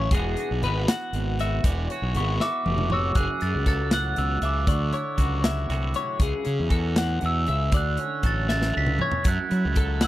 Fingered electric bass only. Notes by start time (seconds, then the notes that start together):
0.11 E1
0.51 B1
0.63 G#1
1.13 G#1
1.64 E1
2.02 B1
2.15 G#1
2.66 F1
3.15 F#1
3.42 F#2
3.55 C#2
4.18 C#2
4.41 C#2
4.67 D2
5.18 C#2
5.70 C2
6.19 C#2
6.46 C#3
6.60 E2
7.23 E2
7.49 C#2
7.73 D2
8.24 A1
8.77 C#2
9.25 F#2
9.51 F#3
9.65 C#2